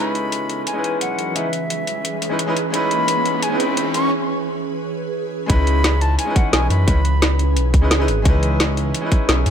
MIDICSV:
0, 0, Header, 1, 7, 480
1, 0, Start_track
1, 0, Key_signature, 4, "minor"
1, 0, Tempo, 344828
1, 1890, Time_signature, 4, 2, 24, 8
1, 13230, End_track
2, 0, Start_track
2, 0, Title_t, "Flute"
2, 0, Program_c, 0, 73
2, 0, Note_on_c, 0, 83, 101
2, 875, Note_off_c, 0, 83, 0
2, 927, Note_on_c, 0, 80, 96
2, 1375, Note_off_c, 0, 80, 0
2, 1407, Note_on_c, 0, 78, 92
2, 1897, Note_on_c, 0, 76, 102
2, 1918, Note_off_c, 0, 78, 0
2, 3574, Note_off_c, 0, 76, 0
2, 3814, Note_on_c, 0, 83, 118
2, 4776, Note_on_c, 0, 80, 108
2, 4797, Note_off_c, 0, 83, 0
2, 5006, Note_off_c, 0, 80, 0
2, 5015, Note_on_c, 0, 83, 110
2, 5459, Note_off_c, 0, 83, 0
2, 5497, Note_on_c, 0, 85, 103
2, 5717, Note_off_c, 0, 85, 0
2, 7647, Note_on_c, 0, 83, 125
2, 8375, Note_on_c, 0, 81, 105
2, 8395, Note_off_c, 0, 83, 0
2, 8603, Note_off_c, 0, 81, 0
2, 8612, Note_on_c, 0, 80, 101
2, 8855, Note_on_c, 0, 78, 93
2, 8876, Note_off_c, 0, 80, 0
2, 9089, Note_off_c, 0, 78, 0
2, 9097, Note_on_c, 0, 80, 97
2, 9317, Note_off_c, 0, 80, 0
2, 9338, Note_on_c, 0, 83, 105
2, 10719, Note_off_c, 0, 83, 0
2, 13230, End_track
3, 0, Start_track
3, 0, Title_t, "Ambient pad"
3, 0, Program_c, 1, 92
3, 0, Note_on_c, 1, 52, 80
3, 0, Note_on_c, 1, 61, 73
3, 0, Note_on_c, 1, 68, 74
3, 0, Note_on_c, 1, 71, 88
3, 7592, Note_off_c, 1, 52, 0
3, 7593, Note_off_c, 1, 61, 0
3, 7593, Note_off_c, 1, 68, 0
3, 7593, Note_off_c, 1, 71, 0
3, 7649, Note_on_c, 1, 61, 73
3, 7649, Note_on_c, 1, 68, 74
3, 7650, Note_on_c, 1, 52, 81
3, 7651, Note_on_c, 1, 71, 91
3, 13230, Note_off_c, 1, 52, 0
3, 13230, Note_off_c, 1, 61, 0
3, 13230, Note_off_c, 1, 68, 0
3, 13230, Note_off_c, 1, 71, 0
3, 13230, End_track
4, 0, Start_track
4, 0, Title_t, "Grand piano"
4, 0, Program_c, 2, 0
4, 0, Note_on_c, 2, 56, 91
4, 0, Note_on_c, 2, 61, 88
4, 0, Note_on_c, 2, 63, 83
4, 0, Note_on_c, 2, 64, 84
4, 7, Note_on_c, 2, 71, 102
4, 983, Note_off_c, 2, 56, 0
4, 1004, Note_on_c, 2, 56, 82
4, 1006, Note_off_c, 2, 61, 0
4, 1020, Note_off_c, 2, 63, 0
4, 1027, Note_on_c, 2, 61, 79
4, 1030, Note_off_c, 2, 64, 0
4, 1042, Note_off_c, 2, 71, 0
4, 1049, Note_on_c, 2, 63, 77
4, 1070, Note_on_c, 2, 64, 77
4, 1093, Note_on_c, 2, 71, 93
4, 1838, Note_off_c, 2, 56, 0
4, 1849, Note_off_c, 2, 61, 0
4, 1860, Note_off_c, 2, 63, 0
4, 1865, Note_on_c, 2, 56, 73
4, 1871, Note_off_c, 2, 64, 0
4, 1876, Note_on_c, 2, 61, 66
4, 1883, Note_off_c, 2, 71, 0
4, 1888, Note_on_c, 2, 63, 67
4, 1898, Note_on_c, 2, 64, 67
4, 1909, Note_on_c, 2, 71, 81
4, 2016, Note_off_c, 2, 56, 0
4, 2022, Note_off_c, 2, 61, 0
4, 2027, Note_off_c, 2, 63, 0
4, 2032, Note_off_c, 2, 64, 0
4, 2038, Note_off_c, 2, 71, 0
4, 3190, Note_on_c, 2, 56, 86
4, 3199, Note_on_c, 2, 61, 80
4, 3211, Note_on_c, 2, 63, 83
4, 3223, Note_on_c, 2, 64, 79
4, 3233, Note_on_c, 2, 71, 97
4, 3285, Note_off_c, 2, 56, 0
4, 3289, Note_off_c, 2, 61, 0
4, 3296, Note_off_c, 2, 63, 0
4, 3301, Note_off_c, 2, 64, 0
4, 3307, Note_off_c, 2, 71, 0
4, 3429, Note_on_c, 2, 56, 97
4, 3441, Note_on_c, 2, 61, 89
4, 3451, Note_on_c, 2, 63, 90
4, 3462, Note_on_c, 2, 64, 92
4, 3473, Note_on_c, 2, 71, 108
4, 3525, Note_off_c, 2, 56, 0
4, 3531, Note_off_c, 2, 61, 0
4, 3536, Note_off_c, 2, 63, 0
4, 3541, Note_off_c, 2, 64, 0
4, 3546, Note_off_c, 2, 71, 0
4, 3763, Note_on_c, 2, 56, 95
4, 3786, Note_on_c, 2, 61, 91
4, 3807, Note_on_c, 2, 63, 88
4, 3829, Note_on_c, 2, 64, 90
4, 3852, Note_on_c, 2, 71, 107
4, 4826, Note_off_c, 2, 56, 0
4, 4847, Note_off_c, 2, 61, 0
4, 4847, Note_on_c, 2, 56, 86
4, 4862, Note_off_c, 2, 63, 0
4, 4868, Note_on_c, 2, 61, 78
4, 4873, Note_off_c, 2, 64, 0
4, 4885, Note_off_c, 2, 71, 0
4, 4892, Note_on_c, 2, 63, 82
4, 4914, Note_on_c, 2, 64, 80
4, 4935, Note_on_c, 2, 71, 96
4, 5679, Note_off_c, 2, 56, 0
4, 5690, Note_off_c, 2, 61, 0
4, 5702, Note_off_c, 2, 63, 0
4, 5713, Note_off_c, 2, 64, 0
4, 5724, Note_off_c, 2, 71, 0
4, 7605, Note_on_c, 2, 56, 97
4, 7627, Note_on_c, 2, 61, 86
4, 7648, Note_on_c, 2, 63, 89
4, 7672, Note_on_c, 2, 64, 88
4, 7692, Note_on_c, 2, 71, 105
4, 8666, Note_off_c, 2, 56, 0
4, 8687, Note_on_c, 2, 56, 88
4, 8690, Note_off_c, 2, 61, 0
4, 8703, Note_off_c, 2, 63, 0
4, 8711, Note_on_c, 2, 61, 79
4, 8714, Note_off_c, 2, 64, 0
4, 8725, Note_off_c, 2, 71, 0
4, 8732, Note_on_c, 2, 63, 82
4, 8756, Note_on_c, 2, 64, 82
4, 8776, Note_on_c, 2, 71, 94
4, 9519, Note_off_c, 2, 56, 0
4, 9532, Note_off_c, 2, 61, 0
4, 9542, Note_off_c, 2, 63, 0
4, 9549, Note_on_c, 2, 56, 73
4, 9554, Note_off_c, 2, 64, 0
4, 9560, Note_on_c, 2, 61, 70
4, 9564, Note_off_c, 2, 71, 0
4, 9572, Note_on_c, 2, 63, 71
4, 9584, Note_on_c, 2, 64, 68
4, 9594, Note_on_c, 2, 71, 84
4, 9698, Note_off_c, 2, 56, 0
4, 9704, Note_off_c, 2, 61, 0
4, 9710, Note_off_c, 2, 63, 0
4, 9716, Note_off_c, 2, 64, 0
4, 9721, Note_off_c, 2, 71, 0
4, 10874, Note_on_c, 2, 56, 91
4, 10883, Note_on_c, 2, 61, 82
4, 10894, Note_on_c, 2, 63, 82
4, 10905, Note_on_c, 2, 64, 84
4, 10918, Note_on_c, 2, 71, 97
4, 10967, Note_off_c, 2, 56, 0
4, 10972, Note_off_c, 2, 61, 0
4, 10977, Note_off_c, 2, 63, 0
4, 10983, Note_off_c, 2, 64, 0
4, 10989, Note_off_c, 2, 71, 0
4, 11112, Note_on_c, 2, 56, 99
4, 11124, Note_on_c, 2, 61, 91
4, 11136, Note_on_c, 2, 63, 92
4, 11146, Note_on_c, 2, 64, 90
4, 11157, Note_on_c, 2, 71, 112
4, 11206, Note_off_c, 2, 56, 0
4, 11212, Note_off_c, 2, 61, 0
4, 11218, Note_off_c, 2, 63, 0
4, 11223, Note_off_c, 2, 64, 0
4, 11229, Note_off_c, 2, 71, 0
4, 11445, Note_on_c, 2, 56, 97
4, 11468, Note_on_c, 2, 61, 91
4, 11491, Note_on_c, 2, 63, 89
4, 11513, Note_on_c, 2, 64, 89
4, 11534, Note_on_c, 2, 71, 107
4, 12506, Note_off_c, 2, 56, 0
4, 12527, Note_on_c, 2, 56, 88
4, 12529, Note_off_c, 2, 61, 0
4, 12544, Note_off_c, 2, 63, 0
4, 12550, Note_on_c, 2, 61, 82
4, 12555, Note_off_c, 2, 64, 0
4, 12566, Note_off_c, 2, 71, 0
4, 12573, Note_on_c, 2, 63, 78
4, 12593, Note_on_c, 2, 64, 80
4, 12616, Note_on_c, 2, 71, 94
4, 13230, Note_off_c, 2, 56, 0
4, 13230, Note_off_c, 2, 61, 0
4, 13230, Note_off_c, 2, 63, 0
4, 13230, Note_off_c, 2, 64, 0
4, 13230, Note_off_c, 2, 71, 0
4, 13230, End_track
5, 0, Start_track
5, 0, Title_t, "Analog synth bass"
5, 0, Program_c, 3, 38
5, 0, Note_on_c, 3, 37, 96
5, 910, Note_off_c, 3, 37, 0
5, 1407, Note_on_c, 3, 35, 78
5, 1625, Note_off_c, 3, 35, 0
5, 1649, Note_on_c, 3, 42, 96
5, 1866, Note_off_c, 3, 42, 0
5, 1890, Note_on_c, 3, 37, 98
5, 2832, Note_off_c, 3, 37, 0
5, 3088, Note_on_c, 3, 37, 97
5, 3550, Note_off_c, 3, 37, 0
5, 3570, Note_on_c, 3, 37, 89
5, 3787, Note_off_c, 3, 37, 0
5, 3810, Note_on_c, 3, 37, 100
5, 4752, Note_off_c, 3, 37, 0
5, 5246, Note_on_c, 3, 35, 81
5, 5465, Note_off_c, 3, 35, 0
5, 5489, Note_on_c, 3, 42, 94
5, 5706, Note_off_c, 3, 42, 0
5, 7651, Note_on_c, 3, 37, 99
5, 8592, Note_off_c, 3, 37, 0
5, 9094, Note_on_c, 3, 35, 80
5, 9309, Note_off_c, 3, 35, 0
5, 9331, Note_on_c, 3, 42, 94
5, 9547, Note_off_c, 3, 42, 0
5, 9572, Note_on_c, 3, 37, 100
5, 10530, Note_on_c, 3, 35, 92
5, 10551, Note_off_c, 3, 37, 0
5, 10771, Note_on_c, 3, 37, 79
5, 10792, Note_off_c, 3, 35, 0
5, 11249, Note_on_c, 3, 32, 83
5, 11270, Note_off_c, 3, 37, 0
5, 11466, Note_off_c, 3, 32, 0
5, 11490, Note_on_c, 3, 37, 99
5, 12432, Note_off_c, 3, 37, 0
5, 12929, Note_on_c, 3, 35, 82
5, 13147, Note_off_c, 3, 35, 0
5, 13171, Note_on_c, 3, 42, 96
5, 13230, Note_off_c, 3, 42, 0
5, 13230, End_track
6, 0, Start_track
6, 0, Title_t, "Riser"
6, 0, Program_c, 4, 103
6, 0, Note_on_c, 4, 60, 78
6, 5729, Note_off_c, 4, 60, 0
6, 13230, End_track
7, 0, Start_track
7, 0, Title_t, "Drums"
7, 210, Note_on_c, 9, 42, 68
7, 349, Note_off_c, 9, 42, 0
7, 449, Note_on_c, 9, 42, 93
7, 589, Note_off_c, 9, 42, 0
7, 689, Note_on_c, 9, 42, 67
7, 828, Note_off_c, 9, 42, 0
7, 930, Note_on_c, 9, 42, 91
7, 1069, Note_off_c, 9, 42, 0
7, 1171, Note_on_c, 9, 42, 67
7, 1310, Note_off_c, 9, 42, 0
7, 1409, Note_on_c, 9, 42, 93
7, 1548, Note_off_c, 9, 42, 0
7, 1650, Note_on_c, 9, 42, 66
7, 1789, Note_off_c, 9, 42, 0
7, 1889, Note_on_c, 9, 42, 94
7, 2028, Note_off_c, 9, 42, 0
7, 2129, Note_on_c, 9, 42, 67
7, 2268, Note_off_c, 9, 42, 0
7, 2370, Note_on_c, 9, 42, 94
7, 2509, Note_off_c, 9, 42, 0
7, 2608, Note_on_c, 9, 42, 69
7, 2748, Note_off_c, 9, 42, 0
7, 2850, Note_on_c, 9, 42, 93
7, 2989, Note_off_c, 9, 42, 0
7, 3090, Note_on_c, 9, 42, 70
7, 3229, Note_off_c, 9, 42, 0
7, 3329, Note_on_c, 9, 42, 95
7, 3468, Note_off_c, 9, 42, 0
7, 3571, Note_on_c, 9, 42, 68
7, 3710, Note_off_c, 9, 42, 0
7, 3810, Note_on_c, 9, 42, 91
7, 3950, Note_off_c, 9, 42, 0
7, 4052, Note_on_c, 9, 42, 70
7, 4191, Note_off_c, 9, 42, 0
7, 4288, Note_on_c, 9, 42, 96
7, 4428, Note_off_c, 9, 42, 0
7, 4531, Note_on_c, 9, 42, 66
7, 4670, Note_off_c, 9, 42, 0
7, 4768, Note_on_c, 9, 42, 92
7, 4907, Note_off_c, 9, 42, 0
7, 5010, Note_on_c, 9, 42, 70
7, 5149, Note_off_c, 9, 42, 0
7, 5249, Note_on_c, 9, 42, 96
7, 5388, Note_off_c, 9, 42, 0
7, 5489, Note_on_c, 9, 42, 70
7, 5629, Note_off_c, 9, 42, 0
7, 7651, Note_on_c, 9, 36, 120
7, 7651, Note_on_c, 9, 42, 99
7, 7790, Note_off_c, 9, 36, 0
7, 7790, Note_off_c, 9, 42, 0
7, 7894, Note_on_c, 9, 42, 70
7, 8033, Note_off_c, 9, 42, 0
7, 8133, Note_on_c, 9, 38, 116
7, 8133, Note_on_c, 9, 42, 97
7, 8273, Note_off_c, 9, 38, 0
7, 8273, Note_off_c, 9, 42, 0
7, 8371, Note_on_c, 9, 42, 72
7, 8511, Note_off_c, 9, 42, 0
7, 8612, Note_on_c, 9, 42, 95
7, 8751, Note_off_c, 9, 42, 0
7, 8850, Note_on_c, 9, 42, 69
7, 8851, Note_on_c, 9, 36, 109
7, 8990, Note_off_c, 9, 42, 0
7, 8991, Note_off_c, 9, 36, 0
7, 9091, Note_on_c, 9, 38, 120
7, 9091, Note_on_c, 9, 42, 97
7, 9230, Note_off_c, 9, 38, 0
7, 9230, Note_off_c, 9, 42, 0
7, 9332, Note_on_c, 9, 42, 71
7, 9471, Note_off_c, 9, 42, 0
7, 9572, Note_on_c, 9, 36, 125
7, 9572, Note_on_c, 9, 42, 100
7, 9711, Note_off_c, 9, 36, 0
7, 9711, Note_off_c, 9, 42, 0
7, 9812, Note_on_c, 9, 42, 72
7, 9951, Note_off_c, 9, 42, 0
7, 10053, Note_on_c, 9, 38, 125
7, 10053, Note_on_c, 9, 42, 98
7, 10192, Note_off_c, 9, 38, 0
7, 10192, Note_off_c, 9, 42, 0
7, 10292, Note_on_c, 9, 42, 71
7, 10431, Note_off_c, 9, 42, 0
7, 10531, Note_on_c, 9, 42, 92
7, 10670, Note_off_c, 9, 42, 0
7, 10771, Note_on_c, 9, 36, 112
7, 10771, Note_on_c, 9, 42, 71
7, 10910, Note_off_c, 9, 36, 0
7, 10910, Note_off_c, 9, 42, 0
7, 11010, Note_on_c, 9, 38, 127
7, 11010, Note_on_c, 9, 42, 102
7, 11150, Note_off_c, 9, 38, 0
7, 11150, Note_off_c, 9, 42, 0
7, 11250, Note_on_c, 9, 42, 70
7, 11389, Note_off_c, 9, 42, 0
7, 11490, Note_on_c, 9, 42, 95
7, 11491, Note_on_c, 9, 36, 127
7, 11629, Note_off_c, 9, 42, 0
7, 11630, Note_off_c, 9, 36, 0
7, 11731, Note_on_c, 9, 42, 70
7, 11871, Note_off_c, 9, 42, 0
7, 11971, Note_on_c, 9, 38, 122
7, 11971, Note_on_c, 9, 42, 98
7, 12111, Note_off_c, 9, 38, 0
7, 12111, Note_off_c, 9, 42, 0
7, 12212, Note_on_c, 9, 42, 69
7, 12351, Note_off_c, 9, 42, 0
7, 12451, Note_on_c, 9, 42, 93
7, 12591, Note_off_c, 9, 42, 0
7, 12689, Note_on_c, 9, 42, 71
7, 12690, Note_on_c, 9, 36, 110
7, 12829, Note_off_c, 9, 36, 0
7, 12829, Note_off_c, 9, 42, 0
7, 12929, Note_on_c, 9, 38, 127
7, 12929, Note_on_c, 9, 42, 93
7, 13068, Note_off_c, 9, 38, 0
7, 13068, Note_off_c, 9, 42, 0
7, 13170, Note_on_c, 9, 42, 69
7, 13230, Note_off_c, 9, 42, 0
7, 13230, End_track
0, 0, End_of_file